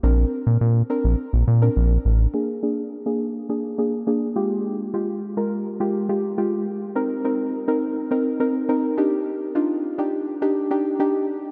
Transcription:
<<
  \new Staff \with { instrumentName = "Synth pluck" } { \time 4/4 \key bes \mixolydian \tempo 4 = 104 <c' d' bes'>8. r8. <c' d' bes'>8 r8. <c' d' bes'>8 r8. | <bes d' aes'>16 r16 <bes d' aes'>16 r8 <bes d' aes'>16 r8 <bes d' aes'>16 r16 <bes d' aes'>16 r16 <bes d' aes'>8 <aes f' g'>8~ | <aes f' g'>16 r16 <aes f' g'>16 r8 <aes f' bes'>16 r8 <aes f' g'>16 r16 <aes f' g'>16 r16 <aes f' g'>8 r8 | <c' ees' bes'>16 r16 <c' ees' bes'>16 r8 <c' ees' bes'>16 r8 <c' ees' bes'>16 r16 <c' ees' bes'>16 r16 <c' ees' bes'>8 <d' ees' g'>8~ |
<d' ees' g'>16 r16 <d' ees' f'>16 r8 <d' ees' g'>16 r8 <d' ees' g'>16 r16 <d' ees' g'>16 r16 <d' ees' g'>8 r8 | }
  \new Staff \with { instrumentName = "Analog synth bass" } { \clef bass \time 4/4 \key bes \mixolydian bes,,8 r16 bes,16 bes,8 r16 bes,,16 r16 bes,,16 bes,8 bes,,8 a,,8 | r1 | r1 | r1 |
r1 | }
>>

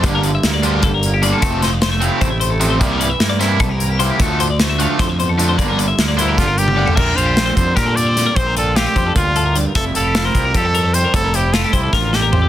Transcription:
<<
  \new Staff \with { instrumentName = "Clean electric guitar" } { \time 7/8 \key bes \lydian \tempo 4 = 151 d''16 bes'16 d''16 e''8 d''16 c''16 bes'16 a'16 bes'8 g'16 d''16 a'16 | a'8 c''16 d''16 c''16 e''16 f''8 c''16 e''16 c''16 a'8 c''16 | d''16 bes'16 d''16 e''8 d''16 c''16 bes'16 a'16 bes'8 g'16 c''16 g'16 | a'8 c''16 d''16 c''16 e''16 f''8 c''16 e''16 c''16 a'8 c''16 |
d''16 bes'16 d''16 e''8 d''16 c''16 bes'16 a'16 bes'8 g'16 d''16 a'16 | e''8 f''16 g'16 f'16 c''8 bes'16 g'16 a'16 bes'16 c''8 bes'16 | c''16 bes'16 d''8 f'16 g'16 c''16 a'16 bes'8 a'16 bes'16 d''16 bes'16 | e''8 f''16 g'16 f'16 c''8 bes'16 g'16 a'16 bes'16 c''8 bes'16 |
c''16 bes'16 c''8 f'16 g'16 c''16 a'16 bes'8 a'16 bes'16 c''16 a'16 | }
  \new Staff \with { instrumentName = "Trumpet" } { \time 7/8 \key bes \lydian r2. r8 | r2. r8 | r2. r8 | r2. r8 |
r4. e'8 f'8 g'4 | bes'8 c''4 c''8 bes'8 d''4 | c''8 a'8 g'4 f'4 r8 | a'8 a'8. bes'8. a'4 c''8 |
a'8 g'8 a'8 e'8 f'8 g'4 | }
  \new Staff \with { instrumentName = "Overdriven electric guitar" } { \clef bass \time 7/8 \key bes \lydian <d g bes d'>8 r4 <d g bes d'>8 r4 <d g bes d'>8 | <c f a c'>8 r4 <c f a c'>8 r4 <c f a c'>8 | <c g bes e'>8 r4 <c g bes e'>8 r4 <c g bes e'>8 | <d f a d'>8 r4 <d f a d'>8 r4 <d f a d'>8 |
<d g bes d'>8 r4 <d g bes d'>8 r4 <d g bes d'>8 | r2. r8 | r2. r8 | r2. r8 |
r2. r8 | }
  \new Staff \with { instrumentName = "Clean electric guitar" } { \clef bass \time 7/8 \key bes \lydian << { r4 bes8 g'4 bes8 f'8 | r4 a8 e'4 a8 c'8 | r4 bes8 e'4 bes8 c'8 | r4 a8 f'2 |
<d bes f' bes'>4 bes8 e'16 g'4.~ g'16 | <d g c' f'>8 f'8 c'8 g8 c'4 g8 | c'8 f'8 c'8 g2 | <f g c' e'>8 e'8 c'8 g8 c'4 g8 |
e'8 e'8 e'8 g2 | } \\ { <g, d>8 d4. d4. | f,8 f4. c4. | c8 e4. c4. | d,8 d4. d,8 e,8 f,8 |
g,8 d4. f,8 g,8 a,8 | bes,4. d4. f,8 | bes,4. d8 bes,8 a,8 g,8 | f,4. f4. c8 |
f,4. f8 d,8 e,8 f,8 | } >> }
  \new Staff \with { instrumentName = "Fingered electric bass" } { \clef bass \time 7/8 \key bes \lydian g,,4 d,4 g,,4. | f,,2 a,,4. | c,4 g,4 c,4. | d,2 f,4. |
g,,4 d,4 g,,4. | bes,,8 bes,,4 f,8 bes,4. | bes,,4. f,8 d,4. | f,,8 f,,4 c,8 f,4. |
f,,4. c,8 a,,4. | }
  \new DrumStaff \with { instrumentName = "Drums" } \drummode { \time 7/8 <hh bd>8 hh8 <hh sn>8 hh8 <hh bd>8 hh8 hh8 | <hh bd>8 <hh sn>8 <hh sn>8 hh8 <hh bd>8 hh8 hh8 | <hh bd>8 hh8 <hh sn>8 <hh sn>8 <hh bd>8 hh8 hh8 | <hh bd>8 hh8 <hh sn>8 hh8 <hh bd sn>8 hh8 hh8 |
<hh bd>8 hh8 <hh sn>8 hh8 <hh bd sn>8 hh16 tommh8 tomfh16 | <cymc bd>8 hh8 <hh sn>8 <hh bd>8 <hh bd sn>8 hh8 <hh sn>8 | <hh bd>8 hh8 <hh sn>8 <hh bd>8 <hh bd>8 hh8 hh8 | <hh bd>8 hh8 <hh sn>8 <hh bd>8 <hh bd>8 hh8 hh8 |
<hh bd>8 hh8 <hh sn>8 <hh bd>8 <bd sn>8 sn8 tomfh8 | }
>>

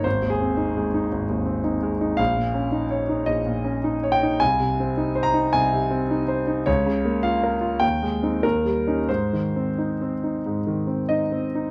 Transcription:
\new Staff \with { instrumentName = "Grand piano" } { \time 4/4 \key aes \major \tempo 4 = 106 << { c''8 aes'2. r8 | f''2 ees''4. g''8 | aes''4. bes''8 aes''2 | des''4 f''4 g''4 bes'4 |
c''2. ees''4 | } \\ { \tuplet 3/2 { aes,,8 ees,8 c'8 ees'8 aes8 ees'8 aes,,8 ees,8 c'8 ees'8 aes8 ees'8 } | \tuplet 3/2 { bes,,8 bes,8 des'8 ees'8 des''8 ees'8 bes,,8 bes,8 des'8 ees'8 des''8 ees'8 } | \tuplet 3/2 { c,8 c8 c'8 ees'8 c''8 ees'8 c,8 c8 c'8 ees'8 c''8 ees'8 } | \tuplet 3/2 { des,8 des8 bes8 f'8 bes'8 f'8 ees,8 aes8 <c' ees'>8 ees,8 g8 <des' ees'>8 } |
\tuplet 3/2 { aes,8 ees8 c'8 ees'8 c'8 ees'8 aes,8 ees8 c'8 ees'8 c'8 ees'8 } | } >> }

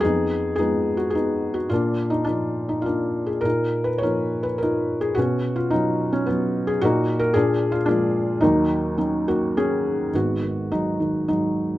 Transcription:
<<
  \new Staff \with { instrumentName = "Felt piano" } { \time 3/4 \key ees \minor \tempo 4 = 107 << { aes'4 aes'8. ges'16 aes'8. ges'16 | f'8. ees'16 d'8. ees'16 f'8. aes'16 | bes'8. ces''16 des''8. ces''16 bes'8. aes'16 | fis'8. f'16 ees'8. cis'16 b8. aes'16 |
ges'8. bes'16 aes'8. f'16 d'4 | ees'4. ges'8 aes'4 | \key gis \minor fis'4 dis'4 dis'4 | } \\ { <ces' ees'>4 <ces' ees'>4 <ces' ees'>4 | <bes d'>4. r8 <bes d'>4 | <ees' f'>4 <f' bes'>4 <ees' f'>4 | <b cis'>4. r8 fis4 |
<bes ees'>4 <d' f'>4 f4 | <ges bes>4. bes8 des'4 | b4 fis4 fis4 | } >> }
  \new Staff \with { instrumentName = "Felt piano" } { \clef bass \time 3/4 \key ees \minor f,4 <f aes>2 | bes,4 <f bes d'>2 | bes,4 <f bes ees'>2 | b,4 <fis b cis'>2 |
bes,4 bes,4 <aes bes d'>4 | ees,4 <ges des' ees'>2 | \key gis \minor <gis,, gis,>8 dis8 gis,8 dis8 gis,4 | }
>>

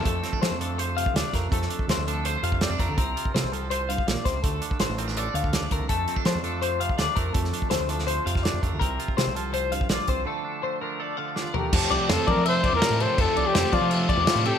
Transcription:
<<
  \new Staff \with { instrumentName = "Clean electric guitar" } { \time 4/4 \key f \major \tempo 4 = 164 a'4 c''8 a'8 c''8 f''8 d''8 bes'8 | a'4 c''8 a'8 c''8 f''8 d''8 bes'8 | bes'4 c''8 a'8 c''8 f''8 d''8 c''8 | a'4 c''8 bes'8 d''8 f''8 d''8 bes'8 |
a'4 c''8 a'8 c''8 f''8 d''8 bes'8 | a'4 c''8 a'8 c''8 f''8 d''8 bes'8 | bes'4 c''8 a'8 c''8 f''8 d''8 c''8 | a'4 c''8 bes'8 d''8 f''8 d''8 bes'8 |
a'8 d''8 c''8 d''8 e''8 d''4 a'8 | a'8 d''8 c''8 d''8 e''8 d''4 a'8 | }
  \new Staff \with { instrumentName = "Trumpet" } { \time 4/4 \key f \major r1 | r1 | r1 | r1 |
r1 | r1 | r1 | r2. f'8 g'8~ |
g'4 a'8 bes'8 c''8. bes'8. c''8 | a'8. g'8. f'4 r8 f'8 g'8 | }
  \new Staff \with { instrumentName = "Clean electric guitar" } { \time 4/4 \key f \major << { a8 c'16 d'16 a8 d'8 c''4 d'8 a8 | a8 d'8 a8 d'8 c''4 c'16 d'16 a8 | c'8 f'8 c'8 f'8 c''2 | a8 d'8 a8 c'16 d'16 a'4 d'8 a8 |
a8 c'16 d'16 a8 d'8 c''4 d'8 a8 | a8 d'8 a8 d'8 c''4 d'8 a8 | c'8 f'8 c'8 f'8 c''4 f'8 c'8 | a8 d'8 a8 d'8 a'4 d'8 a8~ |
a1 | r1 | } \\ { <f, f>4. f4 c4. | f,4. f4 c4. | c4. f4 g,8 bes,8 c8 | d4. f4 d4. |
f,4. f4 c4. | f,4. f4 c4. | c4. f4 g,4. | d4. f4 d4. |
r1 | r1 | } >> }
  \new Staff \with { instrumentName = "Overdriven electric guitar" } { \clef bass \time 4/4 \key f \major r1 | r1 | r1 | r1 |
r1 | r1 | r1 | r1 |
<f, c f a c'>4 <f, c f a c'>4. <f a c'>8 <c f a c'>8 <f a c'>8 | <f, c f a c'>4 <f, c f a c'>4. <f a c'>8 <c f a c'>8 <f a c'>8 | }
  \new Staff \with { instrumentName = "Fingered electric bass" } { \clef bass \time 4/4 \key f \major f,8 r8 f16 f,4.~ f,16 d,16 r16 f,8 | f,8 r8 d,16 d,4~ d,16 f,8. f,16 f,16 d,16 | c,8 r8 c16 c,4.~ c,16 bes,,16 r16 des,8 | d,8 r8 a,,16 a,,4~ a,,16 d,8. d,16 d,16 c,16 |
f,8 r8 f16 f,4.~ f,16 d,16 r16 f,8 | f,8 r8 d,16 d,4~ d,16 f,8. f,16 f,16 d,16 | c,8 r8 c16 c,4.~ c,16 bes,,16 r16 c,8 | r1 |
f,16 r16 c,16 r16 f,16 r16 f16 f4 e,16 r16 a,8 r16 | f,16 r16 c,16 r16 f,16 r16 f16 f4 e,16 r16 a,8 r16 | }
  \new DrumStaff \with { instrumentName = "Drums" } \drummode { \time 4/4 <hh bd>8 <hh sn>16 bd16 <hh sn>8 hh8 hh8 hh16 bd16 <hh sn>8 <hh bd sn>8 | <hh bd>16 sn16 hh16 bd16 <hh sn>8 hh8 hh8 hh16 bd16 <hh sn>8 <hh bd>8 | <hh bd>8 hh16 bd16 <hh sn>8 hh8 hh8 hh16 bd16 <hh sn>8 <hh bd sn>8 | <hh bd>8 hh16 bd16 <hh sn>8 hh16 sn16 hh8 hh16 bd16 <hh sn>8 <hh bd>8 |
<hh bd>8 hh16 bd16 <hh sn>8 hh8 hh8 hh16 bd16 <hh sn>8 <hh bd>8 | <hh bd>16 sn16 hh16 bd16 <hh sn>8 hh16 sn16 hh8 hh16 <bd sn>16 <hh sn>8 <hh bd>8 | <hh bd>8 hh16 bd16 <hh sn>8 hh8 hh8 hh16 bd16 <hh sn>8 <hh bd>8 | r4 r4 r4 sn8 tomfh8 |
<cymc bd>8 cymc8 <cymc sn>8 <cymc bd>8 cymc8 <cymc bd>8 <cymc sn>8 cymc8 | <cymc bd>8 cymc8 <cymc sn>8 <cymc bd>8 cymc8 <cymc bd>8 <cymc sn>8 cymc8 | }
>>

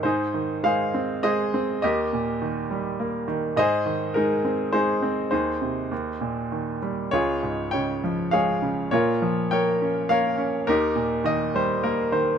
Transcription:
<<
  \new Staff \with { instrumentName = "Grand piano" } { \time 3/4 \key aes \major \tempo 4 = 102 << { c''4 f''4 ees''4 | ees''2~ ees''8 r8 | ees''4 bes'4 c''4 | c''2~ c''8 r8 |
des''4 g''4 f''4 | des''4 g''4 f''4 | bes'4 ees''8 c''8 bes'8 c''8 | } \\ { <ees' aes'>4 <aes' c''>4 <aes' c''>4 | <g' bes'>2~ <g' bes'>8 r8 | <aes' c''>4 ees'4 <ees' aes'>4 | <ees' aes'>2~ <ees' aes'>8 r8 |
<f' aes'>4 des''4 <aes' des''>4 | <f' bes'>4 <bes' des''>4 <bes' des''>4 | <ees' g'>4. r4. | } >> }
  \new Staff \with { instrumentName = "Grand piano" } { \clef bass \time 3/4 \key aes \major aes,8 ees8 aes8 c'8 aes8 c'8 | ees,8 bes,8 ees8 g8 bes8 ees8 | aes,8 ees8 aes8 c'8 aes8 c'8 | ees,8 c8 ees,8 bes,8 ees8 g8 |
des,8 aes,8 des8 f8 aes8 des8 | bes,8 f8 bes8 des'8 bes8 des'8 | ees,8 bes,8 ees8 g8 bes8 ees8 | }
>>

